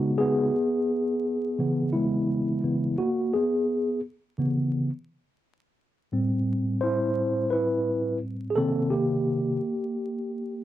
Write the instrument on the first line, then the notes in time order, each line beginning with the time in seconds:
tine electric piano
Already playing: C#3 G#3 B3 D#4 F#4
0.18 B3 G#4
1.59 C#3 E3 B3
1.93 G#3 E4
2.63 C#3 E3 B3
2.98 A#3 F#4
3.33 B3 G#4
4.38 C#3 E3 B3
6.12 A2 G3 C4
6.81 E4 C5
7.50 E4 B4
8.50 G#4
8.55 C3 D#3 A#3 C4 A4
8.90 A#3 G4